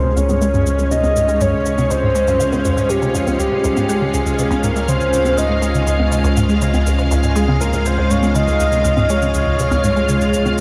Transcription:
0.00 3.37 C#2 medium
0.00 10.60 G#3 medium
0.00 10.60 C#4 medium
0.00 10.60 F4 medium
0.00 0.19 C5 loud
0.00 10.60 F5 medium
0.04 0.12 C3 medium
0.16 0.21 C#2 loud
0.16 0.93 C#5 loud
0.16 cabasa medium
0.29 0.36 G#2 medium
0.29 high conga medium
0.29 cabasa medium
0.42 0.49 G#3 medium
0.42 cabasa medium
0.54 0.65 G2 medium
0.54 cabasa soft
0.66 0.74 C#2 medium
0.66 cabasa medium
0.79 0.86 C#2 medium
0.79 cabasa soft
0.91 0.99 C3 medium
0.91 1.43 D#5 loud
0.91 cabasa medium
1.04 1.08 C#2 loud
1.04 high conga medium
1.04 cabasa soft
1.16 1.23 G#2 medium
1.16 cabasa medium
1.28 1.36 G#3 medium
1.28 cabasa medium
1.41 1.52 G2 medium
1.41 1.92 C#5 loud
1.41 cabasa medium
1.53 1.61 C#2 medium
1.66 1.73 C#2 medium
1.66 cabasa medium
1.78 1.85 C3 medium
1.78 high conga medium
1.78 cabasa medium
1.90 1.95 C#2 loud
1.90 2.91 C5 loud
1.90 cabasa medium
2.03 2.10 G#2 medium
2.15 2.22 G#3 medium
2.15 cabasa medium
2.28 2.39 G2 medium
2.28 cabasa medium
2.40 2.47 C#2 medium
2.40 cabasa medium
2.53 2.60 C#2 medium
2.53 high conga medium
2.53 cabasa soft
2.65 2.72 F2 medium
2.65 cabasa medium
2.77 2.84 G#2 loud
2.77 cabasa soft
2.89 2.97 G#2 medium
2.89 3.17 G4 medium
2.89 cabasa medium
3.02 3.06 C3 medium
3.02 cabasa soft
3.14 3.22 F2 medium
3.14 3.39 F4 medium
3.14 cabasa medium
3.27 3.34 C#2 medium
3.27 high conga medium
3.27 cabasa soft
3.39 3.46 C#2 medium
3.39 10.60 C#2 medium
3.39 4.16 G4 loud
3.39 cabasa medium
3.52 3.59 C3 medium
3.64 3.69 C#2 loud
3.64 cabasa medium
3.77 3.84 G#2 medium
3.77 high conga medium
3.77 cabasa soft
3.89 3.96 G#3 medium
3.89 cabasa medium
4.01 4.09 C#3 medium
4.14 4.21 C#2 medium
4.14 4.65 G#4 loud
4.14 cabasa medium
4.26 4.33 C#2 medium
4.26 cabasa soft
4.38 4.46 C3 medium
4.38 cabasa medium
4.50 4.55 C#2 medium
4.50 high conga medium
4.50 cabasa soft
4.63 4.70 G#2 medium
4.63 4.88 A#4 medium
4.63 cabasa medium
4.76 4.83 G#3 medium
4.76 cabasa soft
4.88 4.95 C#3 medium
4.88 5.40 C5 loud
4.88 cabasa medium
5.00 5.08 C#2 medium
5.00 cabasa soft
5.13 5.20 C#2 medium
5.13 cabasa medium
5.25 5.32 C3 medium
5.25 high conga medium
5.25 cabasa soft
5.37 5.42 C#2 loud
5.37 6.37 D#5 loud
5.37 cabasa medium
5.50 5.57 G#2 medium
5.62 5.69 G#3 medium
5.62 cabasa medium
5.74 5.82 C#3 medium
5.74 cabasa soft
5.87 5.94 C#2 medium
5.87 cabasa medium
5.99 6.07 C#2 medium
5.99 high conga medium
6.12 6.19 C3 medium
6.12 cabasa medium
6.24 6.29 C#2 loud
6.24 cabasa soft
6.37 6.44 G#2 medium
6.37 cabasa medium
6.49 6.56 G#3 medium
6.49 cabasa soft
6.61 6.69 C#3 medium
6.61 cabasa medium
6.74 6.81 C#2 medium
6.74 high conga medium
6.74 cabasa soft
6.86 6.94 C#2 medium
6.86 cabasa medium
6.98 7.06 C3 medium
6.98 cabasa soft
7.11 7.16 C#2 loud
7.11 cabasa medium
7.23 7.31 G#2 medium
7.23 cabasa soft
7.36 7.43 G#3 medium
7.36 7.62 G#4 loud
7.36 cabasa medium
7.48 7.55 C#3 medium
7.48 high conga medium
7.60 7.68 C#2 medium
7.60 7.88 A#4 medium
7.60 cabasa medium
7.73 7.80 C#2 medium
7.73 cabasa soft
7.85 7.93 C3 medium
7.85 8.12 C5 loud
7.85 cabasa medium
7.98 8.02 C#2 medium
8.10 8.18 G#2 medium
8.10 8.35 C#5 loud
8.10 cabasa medium
8.23 8.30 G#3 medium
8.23 high conga medium
8.23 cabasa soft
8.35 8.42 C#3 medium
8.35 9.11 D#5 loud
8.35 cabasa medium
8.47 8.55 C#2 medium
8.47 cabasa soft
8.60 8.67 C#2 medium
8.60 cabasa medium
8.72 8.79 C3 medium
8.72 cabasa soft
8.85 8.89 C#2 loud
8.85 cabasa medium
8.97 9.04 G#2 medium
8.97 high conga medium
8.97 cabasa soft
9.09 9.17 G#3 medium
9.09 10.60 C#5 loud
9.09 cabasa medium
9.22 9.29 C#3 medium
9.22 cabasa soft
9.34 9.41 C#2 medium
9.34 cabasa medium
9.47 9.54 C#2 medium
9.59 9.66 C3 medium
9.59 cabasa medium
9.71 9.76 C#2 loud
9.71 high conga medium
9.71 cabasa soft
9.84 9.91 G#2 medium
9.84 cabasa medium
9.96 10.04 G#3 medium
9.96 cabasa soft
10.09 10.16 C#3 medium
10.09 cabasa medium
10.21 10.28 C#2 medium
10.21 cabasa soft
10.33 10.41 C#2 medium
10.33 cabasa medium
10.46 10.53 C3 medium
10.46 high conga medium
10.46 cabasa soft

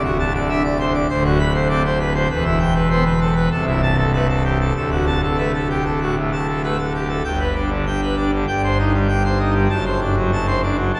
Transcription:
0.00 1.06 D1 medium
0.00 1.06 D2 loud
0.04 0.17 F#4 medium
0.19 0.32 A5 medium
0.35 0.48 D5 medium
0.49 0.63 D4 medium
0.49 0.62 E5 medium
0.64 0.78 D5 medium
0.80 0.92 C5 medium
0.95 1.07 D5 medium
1.09 2.27 D1 medium
1.09 2.27 D2 medium
1.09 1.23 C5 medium
1.25 1.38 F#4 medium
1.39 1.53 B5 loud
1.54 1.68 C5 medium
1.69 1.83 C4 medium
1.69 1.82 D5 medium
1.84 1.98 C5 medium
2.00 2.13 B4 medium
2.15 2.28 C5 medium
2.30 3.48 E1 loud
2.30 3.48 E2 medium
2.30 2.44 B4 medium
2.45 2.59 E4 medium
2.60 2.73 G5 medium
2.75 2.88 B4 medium
2.90 3.04 B3 medium
2.90 3.03 C5 medium
3.06 3.19 B4 medium
3.21 3.34 A4 medium
3.36 3.49 B4 medium
3.51 4.72 C1 medium
3.51 4.72 C2 medium
3.51 3.65 A4 medium
3.67 3.81 E4 medium
3.82 3.96 A5 loud
3.98 4.11 A4 medium
4.14 4.27 A3 medium
4.14 4.27 B4 medium
4.29 4.43 A4 medium
4.45 4.58 G4 medium
4.60 4.73 A4 medium
4.75 7.22 D1 medium
4.75 7.21 D2 medium
4.75 4.90 A4 medium
4.91 5.05 F#4 medium
5.06 5.21 A5 medium
5.23 5.37 A4 medium
5.38 5.52 A3 medium
5.38 5.51 B4 medium
5.54 5.68 A4 medium
5.70 5.83 G4 medium
5.85 5.99 A4 medium
6.01 6.14 A2 medium
6.01 6.15 F#4 medium
6.16 6.31 A2 medium
6.32 6.46 A5 medium
6.48 6.62 A4 medium
6.64 6.78 A3 medium
6.64 6.77 B4 medium
6.79 6.93 A4 medium
6.94 7.08 G4 medium
7.09 7.23 A4 medium
7.24 8.44 G1 medium
7.24 8.44 G2 medium
7.24 7.38 G5 medium
7.40 7.54 B4 medium
7.56 7.70 D4 medium
7.71 7.85 D3 medium
7.87 8.01 G5 medium
8.02 8.16 B4 medium
8.17 8.31 D4 medium
8.33 8.46 D3 medium
8.48 9.67 G1 medium
8.48 9.67 G2 medium
8.48 8.62 G5 medium
8.64 8.77 C5 medium
8.79 8.92 D#4 medium
8.94 9.08 G3 medium
9.09 9.23 G5 medium
9.24 9.38 C5 medium
9.39 9.53 D#4 medium
9.54 9.68 G3 medium
9.70 10.92 F#1 medium
9.70 10.92 F#2 medium
9.70 9.84 A5 loud
9.85 10.00 C5 medium
10.01 10.15 D4 medium
10.17 10.31 F#3 medium
10.33 10.46 A5 medium
10.47 10.61 C5 medium
10.63 10.77 D4 medium
10.78 10.92 F#3 medium
10.94 11.00 F#1 medium
10.94 11.00 F#2 medium
10.94 11.00 A5 medium

